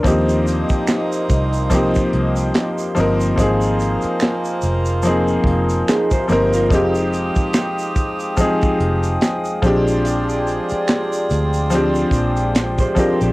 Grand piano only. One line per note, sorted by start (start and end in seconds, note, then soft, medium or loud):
0.00 1.62 F3 medium
0.00 0.27 D4 soft
0.00 0.27 A#4 medium
0.05 1.62 A#3 medium
0.05 1.63 C4 medium
0.05 1.64 D#4 medium
0.05 1.64 G4 medium
1.70 2.89 F3 medium
1.70 2.90 A#3 medium
1.70 2.90 C4 medium
1.70 2.91 D#4 medium
1.75 2.91 G4 medium
2.95 3.34 F3 medium
2.95 3.35 A#3 medium
2.95 3.36 C4 medium
2.95 3.37 D#4 medium
3.00 3.38 A#4 medium
3.36 4.95 F3 medium
3.36 4.96 A#3 medium
3.36 4.96 C4 medium
3.36 4.97 D#4 medium
3.41 4.97 G#4 medium
5.03 6.22 F3 medium
5.03 6.23 A#3 medium
5.03 6.24 C4 medium
5.03 6.24 D#4 medium
5.08 6.25 G#4 medium
6.28 6.68 F3 medium
6.28 6.68 A#3 medium
6.28 6.69 C4 medium
6.28 6.70 D#4 medium
6.32 6.70 A#4 medium
6.70 8.28 F3 medium
6.70 8.29 G#3 medium
6.70 8.30 C4 medium
6.70 8.30 D#4 medium
6.75 8.31 G4 loud
8.37 9.56 F3 medium
8.37 9.56 G#3 medium
8.37 9.57 C4 medium
8.37 9.58 D#4 medium
8.41 9.58 G#4 medium
9.62 11.20 F3 medium
9.62 11.21 G#3 medium
9.62 11.21 C4 medium
9.62 11.22 D4 medium
9.67 11.23 G4 loud
11.70 12.89 F3 medium
11.70 12.90 G#3 medium
11.70 12.90 C4 medium
11.70 12.91 D4 medium
11.75 12.92 G4 medium
12.95 13.33 F3 medium
12.95 13.33 G#3 medium
12.95 13.33 C4 medium
12.95 13.33 D4 medium
12.99 13.33 G4 medium